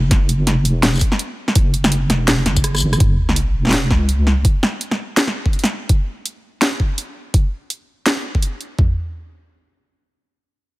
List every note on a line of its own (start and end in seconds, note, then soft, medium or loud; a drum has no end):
0.11 0.67 F#1 loud
0.11 kick loud
0.11 snare medium
0.11 closed hi-hat medium
0.29 closed hi-hat medium
0.47 snare medium
0.47 closed hi-hat medium
0.65 1.00 E1 medium
0.65 closed hi-hat medium
0.83 snare loud
0.83 snare medium
0.83 closed hi-hat medium
0.94 tambourine soft
0.95 tambourine soft
0.97 tambourine soft
0.99 kick medium
0.99 closed hi-hat medium
0.99 tambourine soft
1.12 snare medium
1.19 closed hi-hat medium
1.48 snare medium
1.55 2.11 F#1 loud
1.55 kick loud
1.55 closed hi-hat medium
1.74 closed hi-hat medium
1.84 snare medium
1.84 tambourine soft
1.92 closed hi-hat medium
2.10 2.45 E1 medium
2.10 snare medium
2.10 closed hi-hat medium
2.28 snare loud
2.28 closed hi-hat medium
2.46 2.81 F#1 medium
2.46 snare medium
2.46 closed hi-hat medium
2.56 kick medium
2.56 tambourine medium
2.64 cross-stick medium
2.64 closed hi-hat medium
2.75 cross-stick medium
2.75 tambourine soft
2.76 tambourine soft
2.78 tambourine soft
2.80 2.99 F#1 medium
2.80 closed hi-hat soft
2.80 tambourine medium
2.93 cross-stick medium
2.93 tambourine soft
3.00 3.56 F#1 loud
3.00 kick loud
3.00 closed hi-hat medium
3.00 sub drop medium
3.29 snare medium
3.36 closed hi-hat medium
3.55 3.92 E1 medium
3.65 snare soft
3.67 snare soft
3.69 snare medium
3.71 snare medium
3.73 snare loud
3.73 closed hi-hat medium
3.91 4.44 C#2 loud
3.91 kick medium
3.91 snare medium
4.09 closed hi-hat medium
4.27 snare medium
4.45 kick loud
4.45 closed hi-hat medium
4.63 snare medium
4.81 closed hi-hat medium
4.91 snare medium
5.17 snare loud
5.17 closed hi-hat medium
5.27 snare medium
5.46 kick medium
5.53 closed hi-hat soft
5.59 closed hi-hat soft
5.64 snare medium
5.64 closed hi-hat medium
5.89 kick loud
5.89 closed hi-hat medium
6.26 closed hi-hat medium
6.62 snare loud
6.62 closed hi-hat medium
6.80 kick medium
6.98 closed hi-hat medium
7.34 kick loud
7.34 closed hi-hat medium
7.70 closed hi-hat medium
8.06 snare loud
8.06 closed hi-hat medium
8.35 kick medium
8.42 closed hi-hat medium
8.61 closed hi-hat soft
8.79 kick loud
8.79 floor tom loud